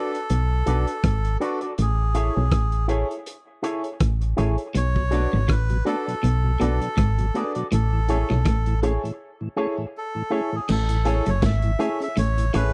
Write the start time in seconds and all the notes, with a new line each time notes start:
Already playing: D4 F#4 A4 B4 D5
0.15 closed hi-hat
0.30 B1, closed hi-hat
0.66 B1 D4 F#4 A4 B4 D5, closed hi-hat
0.87 closed hi-hat
1.04 G#1, kick, cross-stick, closed hi-hat
1.25 closed hi-hat
1.40 D4 F#4 A4 B4 D5, closed hi-hat
1.61 F#4 A4 B4 D5, closed hi-hat
1.78 A1 G#4, closed hi-hat
2.15 E4 G#4 A4 C#5, closed hi-hat
2.37 B1
2.52 A1, kick, cross-stick, closed hi-hat
2.72 closed hi-hat
2.88 E4 G#4 A4 C#5, closed hi-hat
3.11 closed hi-hat
3.26 closed hi-hat
3.63 E4 G#4 A4 C#5, closed hi-hat
3.84 closed hi-hat
4.00 A1, kick, cross-stick, closed hi-hat
4.21 closed hi-hat
4.37 A1 E4 G#4 A4 C#5, closed hi-hat
4.58 A4 C#5, closed hi-hat
4.75 B1 B2 C#5, closed hi-hat
4.96 B2 F#3, kick
5.11 A3 B3 D4 F#4 A4 B4 D5, closed hi-hat
5.33 G#1 G#2 B2 F#3
5.48 A1 A2 B4, kick, cross-stick, closed hi-hat
5.69 B2 F#3, closed hi-hat
5.85 A3 B3 D4 F#4 A4 B4 D5, closed hi-hat
6.07 B2 F#3, closed hi-hat
6.23 B1 B2, closed hi-hat
6.44 B2 F#3
6.60 B1 B2 A3 B3 D4 F#4 A4 B4 D5, closed hi-hat
6.81 B2 F#3, closed hi-hat
6.97 G#1 G#2, kick, cross-stick, closed hi-hat
7.18 B2 F#3, closed hi-hat
7.34 A3 B3 D4 F#4 G#4 A4 B4 D5, closed hi-hat
7.55 B2 F#3 F#4 A4 B4 D5, closed hi-hat
7.72 A1 A2 A4, closed hi-hat
7.93 A2 E3
8.08 A3 C#4 E4 G#4 A4 C#5, closed hi-hat
8.30 B1 A2 B2 E3, cross-stick
8.45 A1 A2, kick, cross-stick, closed hi-hat
8.66 A2 E3, closed hi-hat
8.82 A3 C#4 E4 G#4 A4 C#5, closed hi-hat
9.04 A2 E3, closed hi-hat
9.41 A2 E3
9.57 A3 C#4 E4 G#4 A4 C#5
9.78 A2 E3
9.98 A4
10.15 A2 E3
10.30 A3 C#4 E4 G#4 A4 C#5
10.52 A2 E3 G#4 A4 C#5
10.69 A1 A2 A4, crash
10.89 A2 E3, closed hi-hat
11.05 A3 C#4 E4 G#4 A4 C#5, closed hi-hat
11.26 F#1 F#2 C#5, closed hi-hat
11.42 G#1 G#2 E5, kick, snare, closed hi-hat
11.62 A2 E3, closed hi-hat
11.79 A3 C#4 E4 G#4 A4 C#5, closed hi-hat
12.00 C#4 G#4 E5, closed hi-hat
12.17 A1 A2 C#5, closed hi-hat
12.38 A2 E3, closed hi-hat
12.53 A1 A2 A3 C#4 E4 G#4 A4 B4 C#5, closed hi-hat